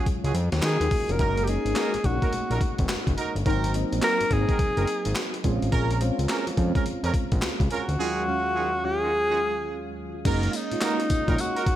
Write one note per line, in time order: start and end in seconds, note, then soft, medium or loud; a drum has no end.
0.00 0.82 F#3 medium
0.00 1.19 G#3 medium
0.00 1.10 C#4 medium
0.00 1.22 F4 medium
0.06 kick medium
0.06 closed hi-hat medium
0.24 0.33 C#2 medium
0.24 0.33 C#4 medium
0.24 0.33 F4 medium
0.24 0.34 F#4 medium
0.24 0.34 G#4 medium
0.24 closed hi-hat soft
0.34 0.50 F2 medium
0.34 closed hi-hat medium
0.52 0.61 D#2 loud
0.52 snare medium
0.52 closed hi-hat medium
0.62 0.78 D#3 medium
0.62 1.13 G#4 loud
0.62 snare loud
0.62 clap loud
0.62 closed hi-hat medium
0.80 0.89 D#2 medium
0.80 0.91 F#3 medium
0.80 0.91 D#4 medium
0.80 closed hi-hat medium
0.91 1.09 A#3 medium
0.91 1.09 F#4 medium
0.91 kick medium
0.91 open hi-hat medium
1.09 1.18 F1 medium
1.09 1.19 C#4 medium
1.09 1.36 A#4 medium
1.09 1.45 A#4 loud
1.09 closed hi-hat soft
1.19 1.58 F#1 loud
1.19 1.45 G#3 medium
1.19 1.45 A#3 medium
1.19 1.45 C#4 medium
1.19 1.46 D#4 medium
1.19 1.45 D#4 medium
1.19 1.46 F#4 medium
1.19 1.46 A#4 loud
1.19 kick loud
1.19 closed hi-hat medium
1.38 closed hi-hat medium
1.43 1.51 G4 medium
1.43 closed hi-hat medium
1.48 1.99 G#3 medium
1.48 1.99 A#3 medium
1.48 1.99 C#4 medium
1.48 1.99 D#4 medium
1.48 2.07 G#4 loud
1.65 1.74 G#1 medium
1.65 closed hi-hat medium
1.76 1.92 D#4 medium
1.76 1.92 F#4 medium
1.76 1.92 A#4 medium
1.76 snare loud
1.76 clap medium
1.76 closed hi-hat medium
1.94 1.98 A#1 medium
1.94 closed hi-hat medium
2.04 2.20 A#1 medium
2.04 3.05 G#3 medium
2.04 2.13 A3 soft
2.04 3.05 C#4 medium
2.04 3.06 D#4 medium
2.04 2.90 F#4 medium
2.04 kick medium
2.04 closed hi-hat medium
2.11 3.09 A#3 medium
2.22 2.32 D#4 medium
2.22 2.32 F#4 medium
2.22 2.32 A#4 medium
2.22 kick medium
2.22 closed hi-hat soft
2.33 2.40 A#1 medium
2.33 closed hi-hat medium
2.50 2.59 A#1 medium
2.50 2.60 D#4 medium
2.50 2.60 F#4 medium
2.50 2.60 A#4 medium
2.50 closed hi-hat soft
2.61 kick medium
2.61 closed hi-hat medium
2.78 2.88 F1 loud
2.78 kick medium
2.78 closed hi-hat medium
2.89 2.97 F#1 soft
2.89 snare loud
2.89 clap loud
2.89 closed hi-hat medium
3.07 3.16 F#1 loud
3.07 kick medium
3.07 closed hi-hat medium
3.17 3.34 D#4 medium
3.17 3.34 F#4 medium
3.17 3.34 A#4 medium
3.17 closed hi-hat medium
3.35 3.44 G1 medium
3.35 closed hi-hat soft
3.46 3.85 G#1 loud
3.46 3.71 F#3 medium
3.46 3.72 A#3 medium
3.46 3.72 C4 medium
3.46 3.72 D#4 medium
3.46 3.73 F#4 medium
3.46 3.73 A#4 loud
3.46 kick loud
3.46 closed hi-hat medium
3.64 closed hi-hat medium
3.74 4.25 F#3 medium
3.74 4.25 A#3 medium
3.74 4.26 C4 medium
3.74 4.26 D#4 loud
3.74 closed hi-hat medium
3.92 4.01 A#1 medium
3.92 closed hi-hat soft
4.02 4.19 C4 medium
4.02 4.19 F#4 medium
4.02 4.19 A#4 medium
4.02 4.34 A#4 loud
4.02 snare loud
4.02 clap medium
4.02 closed hi-hat medium
4.21 4.25 G#1 soft
4.21 closed hi-hat medium
4.31 4.46 G#1 loud
4.31 5.32 F#3 medium
4.31 5.32 A#3 medium
4.31 5.32 C4 medium
4.31 5.32 D#4 medium
4.31 5.45 G#4 loud
4.31 kick medium
4.31 closed hi-hat medium
4.48 4.58 C4 medium
4.48 4.58 F#4 medium
4.48 4.58 A#4 medium
4.48 kick loud
4.48 closed hi-hat soft
4.59 4.66 F#1 soft
4.59 kick loud
4.59 closed hi-hat medium
4.77 4.86 F#1 medium
4.77 4.86 C4 medium
4.77 4.86 F#4 medium
4.77 4.86 A#4 medium
4.77 closed hi-hat soft
4.87 closed hi-hat medium
5.05 5.14 G#1 medium
5.05 closed hi-hat medium
5.15 snare loud
5.15 clap loud
5.15 closed hi-hat medium
5.34 closed hi-hat medium
5.44 5.59 A#1 loud
5.44 5.95 G#3 loud
5.44 5.95 C4 medium
5.44 5.95 C#4 medium
5.44 5.96 F4 loud
5.44 kick medium
5.44 closed hi-hat medium
5.62 5.71 A1 medium
5.62 closed hi-hat soft
5.72 6.11 A#1 loud
5.72 5.99 C#4 medium
5.72 5.99 G#4 medium
5.72 5.99 A#4 loud
5.72 kick loud
5.72 closed hi-hat medium
5.91 closed hi-hat medium
6.01 6.52 G#3 medium
6.01 6.52 C4 medium
6.01 6.52 C#4 medium
6.01 6.52 F4 loud
6.01 closed hi-hat medium
6.19 6.27 C#2 loud
6.19 closed hi-hat soft
6.29 6.45 C#4 medium
6.29 6.45 G#4 medium
6.29 6.45 A#4 medium
6.29 snare loud
6.29 clap medium
6.29 closed hi-hat medium
6.47 6.51 F2 medium
6.47 closed hi-hat medium
6.57 6.73 F2 medium
6.57 7.58 G#3 medium
6.57 7.58 C4 medium
6.57 7.58 C#4 medium
6.57 7.59 F4 medium
6.57 kick medium
6.57 closed hi-hat medium
6.75 6.85 C#4 medium
6.75 6.85 G#4 medium
6.75 6.85 A#4 medium
6.75 kick loud
6.75 closed hi-hat medium
6.85 6.93 F2 medium
6.85 closed hi-hat medium
7.03 7.12 F2 medium
7.03 7.13 C#4 medium
7.03 7.13 G#4 medium
7.03 7.13 A#4 medium
7.03 closed hi-hat soft
7.14 kick medium
7.14 closed hi-hat medium
7.32 7.41 A#1 loud
7.32 kick medium
7.32 closed hi-hat medium
7.42 7.49 C#2 soft
7.42 snare loud
7.42 clap loud
7.42 closed hi-hat medium
7.60 7.69 C#2 medium
7.60 kick medium
7.60 closed hi-hat soft
7.70 7.87 C#4 medium
7.70 8.86 F#4 loud
7.70 7.87 G#4 medium
7.70 7.87 A#4 medium
7.70 closed hi-hat medium
7.88 7.97 D2 medium
7.88 closed hi-hat soft
7.98 8.24 D#2 medium
7.98 8.25 D#3 medium
7.98 8.25 F#3 medium
7.98 8.25 G#3 medium
7.98 8.25 C#4 medium
7.98 8.25 F4 medium
7.98 8.26 F#4 medium
7.98 8.26 G#4 loud
8.27 8.78 D#2 medium
8.27 8.78 F#3 medium
8.27 8.78 G#3 medium
8.27 8.79 C#4 medium
8.27 8.79 F5 medium
8.55 8.71 D#3 medium
8.55 8.71 C#4 medium
8.55 8.72 F4 medium
8.55 8.72 F#4 medium
8.55 8.72 G#4 medium
8.84 9.85 D#2 medium
8.84 9.85 F#3 medium
8.84 9.85 G#3 medium
8.84 9.85 C#4 medium
8.84 9.85 F4 medium
8.84 9.97 G#4 loud
9.01 9.11 D#3 medium
9.01 9.11 C#4 medium
9.01 9.11 F4 medium
9.01 9.11 F#4 medium
9.01 9.11 G#4 medium
9.30 9.39 D#3 medium
9.30 9.39 C#4 medium
9.30 9.39 F4 medium
9.30 9.39 F#4 medium
9.30 9.39 G#4 medium
10.25 10.49 F#1 loud
10.25 10.64 G#3 medium
10.25 10.64 A#3 medium
10.25 10.64 C#4 medium
10.25 10.52 D#4 medium
10.25 10.65 D#4 loud
10.25 10.52 F#4 medium
10.25 10.52 A#4 loud
10.25 kick loud
10.25 closed hi-hat medium
10.25 crash loud
10.25 tambourine medium
10.43 closed hi-hat medium
10.50 10.57 F4 medium
10.50 closed hi-hat medium
10.50 tambourine medium
10.56 11.42 D#4 loud
10.71 10.76 A#1 soft
10.71 11.18 G#3 medium
10.71 11.18 A#3 medium
10.71 11.19 C#4 medium
10.71 11.19 F4 medium
10.71 closed hi-hat medium
10.81 10.98 D#4 medium
10.81 10.98 F#4 medium
10.81 10.98 A#4 medium
10.81 snare loud
10.81 clap loud
10.81 closed hi-hat medium
10.81 tambourine loud
11.00 closed hi-hat medium
11.10 11.17 A#1 medium
11.10 kick medium
11.10 closed hi-hat medium
11.10 tambourine medium
11.28 11.37 A#1 medium
11.28 11.76 G#3 medium
11.28 11.76 A#3 medium
11.28 11.76 C#4 medium
11.28 11.37 D#4 medium
11.28 11.76 D#4 medium
11.28 11.37 F#4 medium
11.28 11.38 A#4 medium
11.28 kick loud
11.28 closed hi-hat medium
11.38 11.76 F#4 loud
11.38 closed hi-hat medium
11.38 tambourine medium
11.56 11.66 D#4 medium
11.56 11.66 F#4 medium
11.56 11.66 A#4 medium
11.56 closed hi-hat medium
11.66 11.74 G#1 medium
11.66 kick loud
11.66 closed hi-hat medium